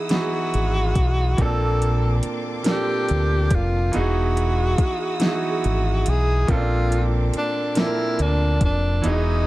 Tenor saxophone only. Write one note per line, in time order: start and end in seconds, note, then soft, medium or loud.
0.13 1.43 F#4 medium
1.42 2.25 A4 loud
2.71 3.56 G4 medium
3.55 3.99 F4 medium
3.98 5.23 F#4 medium
5.27 6.11 F#4 medium
6.09 6.52 G#4 medium
6.50 7.08 F4 loud
7.37 7.80 D4 medium
7.79 8.23 E4 medium
8.21 8.63 D4 medium
8.64 9.09 D4 medium
9.08 9.47 D#4 loud